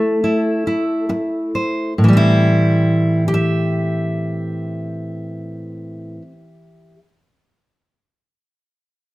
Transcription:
0.00 1.92 A3 medium
0.00 0.22 E4 soft
0.00 1.97 A4 loud
0.24 0.65 E4 soft
0.67 1.93 E4 soft
1.09 muted steel-string acoustic guitar stroke medium
1.55 1.93 C5 soft
1.98 6.16 A2 medium
2.04 6.22 E3 medium
2.08 3.27 G3 medium
2.13 6.31 C4 medium
2.13 3.23 E4 medium
3.28 6.95 G4 medium
3.34 6.98 E5 medium

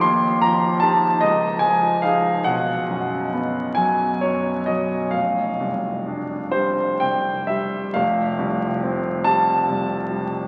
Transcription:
0.01 1.20 D#2 medium
0.01 0.42 C6 loud
0.42 1.08 F3 soft
0.42 0.83 A#5 loud
0.80 1.19 D#4 soft
0.80 1.19 G4 soft
0.80 1.22 A5 medium
1.21 2.44 C#2 medium
1.21 1.63 D#5 medium
1.59 2.30 F3 soft
1.59 2.03 G#5 medium
2.02 2.44 D#4 soft
2.02 2.44 G#4 soft
2.02 2.47 F5 medium
2.44 5.10 B1 medium
2.44 3.78 F#5 medium
2.90 3.62 F#2 soft
3.33 4.05 B3 soft
3.75 4.50 F#3 soft
3.75 4.22 G#5 medium
4.21 4.96 F#2 soft
4.21 4.68 C#5 medium
4.66 5.15 F#3 soft
4.66 5.14 D#5 medium
5.11 7.92 F1 soft
5.11 6.54 F5 medium
5.60 6.36 C2 soft
6.07 6.83 D4 soft
6.52 7.31 G3 soft
6.52 7.01 C5 medium
7.00 7.78 C2 soft
7.00 7.50 G5 medium
7.47 7.96 G3 soft
7.47 7.95 E5 medium
7.94 10.47 F1 medium
7.94 9.26 F5 medium
8.39 9.09 C2 medium
8.83 9.52 C4 soft
9.24 9.94 G3 medium
9.24 10.47 A5 loud
9.69 10.36 C2 soft
10.11 10.47 G3 soft

